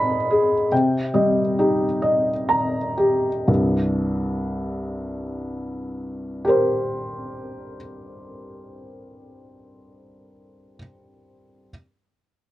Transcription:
Already playing: G#2 D#3 D#4 G#4 D#5 G#5 B5
0.30 G#4
0.72 C3 G5
1.14 G3 D#5
1.59 D#4 G4
2.02 D#5
2.49 A#5
2.98 G4
3.48 C2 G2
6.45 G4 A#4
6.49 C5

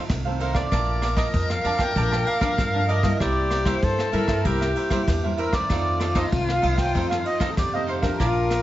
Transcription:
Already playing: D#3 A3 C4 F4
0.10 C2 C3, kick, cross-stick, ride
0.25 D#3 A3 C4 A4 C5 F5
0.39 D#4 A4 A#4 C5 F5, ride
0.54 A4 C5 D5 F5, kick, cross-stick, ride
0.71 A#1 A#2 F3 A3 D4 A#4 D5 F5 A5, kick, cross-stick, ride
1.01 A#4 D5 F5 A5, cross-stick, ride
1.17 F3 A#4 D5 D#5 F5 A5, kick, cross-stick, ride
1.34 F2, kick, ride
1.50 F5, cross-stick
1.64 F2 F3 A3 D4 A#4 D5 F5 A5, ride
1.78 D5 F5 G5 A5, kick, cross-stick, ride
1.95 A#1 A#2 F3 A3 D4 A#4 D5 F5 A5, kick, ride
2.11 D5 F5 A5, cross-stick
2.26 A#4 D5 F5 A5, ride
2.41 F3 A3 D4 A#4 D5 F5 A5, kick, cross-stick, ride
2.58 F2 G2, kick, cross-stick, ride
2.74 F3 A3 D4 D5 F5 A5
2.88 A#4 D5 D#5 F5 A5, ride
3.03 G3 A#3 E4 D5 F5 A5, kick, cross-stick, ride
3.20 C2 C3 E4 G4 A#4 C5 D5 E5, kick, cross-stick, ride
3.51 E4 A#4 C5 E5, cross-stick, ride
3.65 G3 A#3 E4 A#4 C5 E5, kick, cross-stick, ride
3.82 G2 A4, kick, ride
3.99 cross-stick
4.12 G2 G3 A#3 E4 A#4 C5 E5, ride
4.28 A#4 C5 E5, kick, cross-stick, ride
4.45 C2 C3 G3 A#3 E4 G4 A#4 C5 E5, kick, ride
4.61 A#4 C5 E5, cross-stick
4.75 E4 A#4 C5 E5, ride
4.90 G3 A#3 E4 A#4 C5 E5, kick, cross-stick, ride
5.07 E2 G2, kick, cross-stick, ride
5.23 G3 A#3 E4 A#4 C5 E5
5.38 E4 A#4 C5 E5, ride
5.52 D#3 A3 C4 A#4 C5 D5 E5, kick, cross-stick, ride
5.70 F2 D#4 F4 A4 C5 F5, kick, cross-stick, ride
6.00 D#4 A4 C5 F5, cross-stick, ride
6.15 D#3 A3 C4 D#4 A4 C5 D#5 F5, kick, cross-stick, ride
6.32 C2 C3, kick, ride
6.49 F5, cross-stick
6.62 C2 D#3 A3 C4 D#4 A4 C5 F5, ride
6.77 A4 C5 F5 G5, kick, cross-stick, ride
6.94 F2 D#3 A3 C4 D#4 A4 C5 F5, kick, ride
7.10 A4 C5 F5, cross-stick
7.24 D#4 A4 C5 D#5 F5, ride
7.40 D#3 A3 C4 D#4 A4 C5 F5, kick, cross-stick, ride
7.51 A4
7.57 F2 C3 G4 D5, kick, cross-stick, ride
7.73 D#3 A3 C4 A4 C5 D#5 F5
7.87 D#4 A4 C5 F5, ride
8.02 F3 D4 A4 A#4 C5 F5, kick, cross-stick, ride
8.18 A#1 A#2 F4 A#4 D5 F5 A5, kick, cross-stick, ride
8.49 A#4 D5 F5 A5, cross-stick, ride

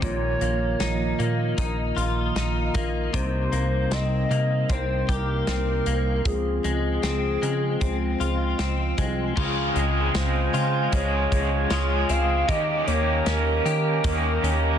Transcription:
Already playing: D#3 C4 D#4
0.02 A#1 A#2 F3 A#3 F4 C#5, kick, closed hi-hat
0.41 A#1 A#3, closed hi-hat
0.80 A#1 D#4, snare, closed hi-hat
1.19 A#2 A#3, closed hi-hat
1.58 A#1 D#4, kick, closed hi-hat
1.96 A#1 F4, closed hi-hat
2.36 A#1 D#4, snare, closed hi-hat
2.74 A#1 A#3, kick, closed hi-hat
3.13 C2 C3 G3 D#4 C5, kick, closed hi-hat
3.52 C2 A#3, closed hi-hat
3.91 C2 C4 D#5, snare, closed hi-hat
4.31 C3 A#3, closed hi-hat
4.69 C2 C4 C5, kick, closed hi-hat
5.09 C2 G4 A#4, kick, closed hi-hat
5.47 C2 C4, snare, closed hi-hat
5.86 C2 A#3, closed hi-hat
6.25 C#2 F3 G#3 C4 F4 G#4, kick, closed hi-hat
6.64 C#2 G#3, closed hi-hat
7.03 C#2 C4, snare, closed hi-hat
7.42 C#3 G#3, closed hi-hat
7.81 C#2 C4, kick, closed hi-hat
8.20 C#2 F4, closed hi-hat
8.59 C#2 C4, snare, closed hi-hat
8.98 C2 G#3, kick, closed hi-hat
9.36 C#2 C#3 F3 G#3 C4 F4 G#4 F5 G#5, kick, crash
9.75 C#2 G#3 C4 G#4, closed hi-hat
10.15 C#2 C5, snare, closed hi-hat, tambourine
10.54 C#3 F4, closed hi-hat
10.92 C#2 C#3 F3 G#3 G#4 C#5, kick, closed hi-hat
11.32 C#2, kick, closed hi-hat
11.70 C#2 F3 G#3 F4 G#4, snare, closed hi-hat, tambourine
12.09 C#2 C4 F5, closed hi-hat
12.48 D#2 D#3 A#3 C#4 G4 D#5 A#5, kick, closed hi-hat
12.87 D#2 A#3 C#4 G4 C#5, closed hi-hat
13.26 D#2 C#4 A#4, snare, closed hi-hat, tambourine
13.65 D#3 G4, closed hi-hat
14.04 D#2 D#3 A#3 C#4 G4, kick, closed hi-hat
14.43 D#2 C#4, closed hi-hat

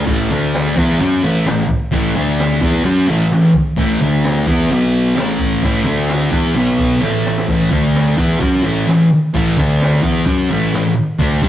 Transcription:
0.06 A1 A2 E3 A3, kick, crash
0.30 D2 D3 A3 D4
0.53 snare, open hi-hat
0.76 E2 E3 B3 E4, kick, crash
0.99 F#2 F#3 C#4 F#4
1.23 A1 A2 E3 A3
1.46 A1 A2 E3, snare, open hi-hat
1.69 kick
1.91 A1 A2 E3 A3, kick, open hi-hat
2.15 D2 D3 A3 D4
2.39 snare, open hi-hat
2.62 E2 E3 B3 E4, kick
2.84 F#2 F#3 C#4 F#4, open hi-hat
3.07 A1 A2 E3 A3
3.31 A1 A2 E3, snare
3.54 kick
3.77 A1 A2 E3 A3, kick, open hi-hat
4.00 D2 D3 A3 D4
4.23 snare, open hi-hat
4.46 E2 E3 B3 E4, kick
4.69 B1 B2 F#3 B3, open hi-hat
5.16 A1 A2 E3 A3, snare, open hi-hat
5.39 kick
5.63 A1 A2 E3 A3, kick, open hi-hat
5.84 D2 D3 A3 D4
6.08 snare, open hi-hat
6.31 E2 E3 B3 E4, kick
6.54 B1 B2 F#3 B3, open hi-hat
6.78 kick
7.01 A1 A2 E3 A3, snare
7.26 snare
7.38 snare
7.48 A1 A2 E3 A3, kick, open hi-hat
7.70 D2 D3 A3 D4, kick
7.94 snare, open hi-hat
8.17 E2 E3 B3 E4, kick, crash
8.39 F#2 F#3 C#4 F#4, kick
8.63 A1 A2 E3 A3
8.88 A1 A2 E3, snare, open hi-hat
9.34 A1 A2 E3 A3, kick, open hi-hat
9.57 D2 D3 A3 D4, kick
9.80 snare, open hi-hat
10.02 E2 E3 B3 E4, kick
10.26 F#2 F#3 C#4 F#4, kick, open hi-hat
10.50 A1 A2 E3 A3
10.73 A1 A2 E3, snare, open hi-hat
11.19 D2 D3 A3 D4, kick, open hi-hat
11.42 G2 G3 D4 G4, kick

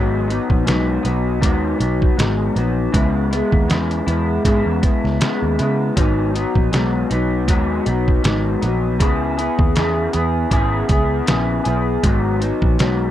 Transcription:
Already playing: G#1 G#2 F#3 B3 D#4
0.28 F#3 B3 D#4, closed hi-hat
0.50 A#1, kick
0.65 B1 G#2 F#3 B3 D#4, snare, closed hi-hat
1.03 B1 F#3 B3 D#4, closed hi-hat
1.41 D#2 G#2 F#3 B3 D#4, kick, closed hi-hat
1.78 B1 F#3 B3 D#4, closed hi-hat
2.02 kick
2.17 G#1 G#2 F#3 B3, snare, closed hi-hat
2.21 D#4
2.55 A#1 F#3 B3 D#4, closed hi-hat
2.92 C#2 C#3 G#3 B3 E4, kick, closed hi-hat
3.31 G#3 B3 E4, closed hi-hat
3.52 D#2, kick
3.68 E2 C#3 G#3 B3 E4, snare, closed hi-hat
3.91 closed hi-hat
4.06 E2 G#3 B3 E4, closed hi-hat
4.45 G#2 C#3 G#3 B3 E4, kick, closed hi-hat
4.66 E2
4.82 B3 E4, kick, closed hi-hat
4.86 G#3
5.04 C#2, snare
5.20 C#3 G#3 B3 E4, snare, closed hi-hat
5.43 D#2
5.58 C#3 G#3 B3 E4, closed hi-hat
5.96 G#1 G#2 F#3 B3 D#4, kick, closed hi-hat
6.34 F#3 B3 D#4, closed hi-hat
6.55 A#1, kick
6.72 B1 G#2 F#3 B3 D#4, snare, closed hi-hat
7.10 B1 F#3 B3 D#4, closed hi-hat
7.48 D#2 G#2 F#3 B3 D#4, kick, closed hi-hat
7.85 B1 B3 D#4, closed hi-hat
7.89 F#3
8.08 kick
8.23 G#1 G#2 F#3 B3, snare, closed hi-hat
8.27 D#4
8.61 A#1 F#3 B3 D#4, closed hi-hat
8.99 C#2 C#3 B3 E4 G#4, kick, closed hi-hat
9.37 B3 E4 G#4, closed hi-hat
9.59 D#2, kick
9.76 E2 C#3 B3 E4 G#4, snare, closed hi-hat
10.13 E2 B3 E4 G#4, closed hi-hat
10.51 G#1 C#3 B3 E4 G#4, kick, closed hi-hat
10.88 C#2 E4 G#4, kick, closed hi-hat
10.92 B3
11.26 A#1 C#3 B3 E4 G#4, snare, closed hi-hat
11.64 B1 B3 E4 G#4, closed hi-hat
12.03 G#1 G#2 F#3 B3 D#4, kick, closed hi-hat
12.40 F#3 B3 D#4, closed hi-hat
12.62 A#1, kick
12.78 B1 G#2 F#3 B3 D#4, snare, closed hi-hat

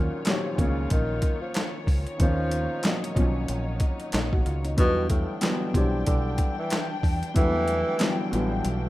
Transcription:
Already playing: A#2 D#3 F3 F#3 C#4 F4 C#5
0.25 A#2 C3 D#3 F3 F#3, snare, clap, closed hi-hat
0.29 C#5
0.56 C#2 A#2 D#3 F3 A#3 C#4, kick, closed hi-hat
0.60 C#3
0.90 A#1 D#3, kick, closed hi-hat
1.22 kick, closed hi-hat
1.41 F3
1.54 snare, clap, closed hi-hat
1.87 C#2, kick, open hi-hat
2.07 closed hi-hat
2.18 D#2 A#2 D#3 F3 A#3 C#4 D#4, kick, closed hi-hat
2.51 closed hi-hat
2.82 A#2 D#3 F3 F#3, snare, clap, closed hi-hat
2.86 D#4
3.04 closed hi-hat
3.14 B1 A#2 D#3 F3 F#3 C#4, kick, closed hi-hat
3.48 A#1, closed hi-hat
3.80 kick, closed hi-hat
4.00 closed hi-hat
4.12 A#1 D#4, snare, clap, closed hi-hat
4.33 F#4, kick
4.45 C#2 F4, closed hi-hat
4.65 D#4, closed hi-hat
4.77 E2 G2 B2 D3 E3 F#3 B3 D4 G5, kick, closed hi-hat
5.09 A2, kick, closed hi-hat
5.41 G2 B2 D3 E3 F#3 B3, snare, clap, closed hi-hat
5.73 B1 G2 C3 D3 E3 F#3 D4, kick, closed hi-hat
6.06 B1 D3, kick, closed hi-hat
6.38 kick, closed hi-hat
6.58 E3
6.70 snare, clap, closed hi-hat
7.03 E2, kick, open hi-hat
7.23 closed hi-hat
7.34 E2 G2 D3 E3 F#3, kick, closed hi-hat
7.38 A3
7.45 B3
7.68 closed hi-hat
7.99 G2 D3 E3 F#3, snare, clap, closed hi-hat
8.03 B3
8.31 A1 G2 D3 E3 F#3, closed hi-hat
8.35 B3
8.65 B1, closed hi-hat

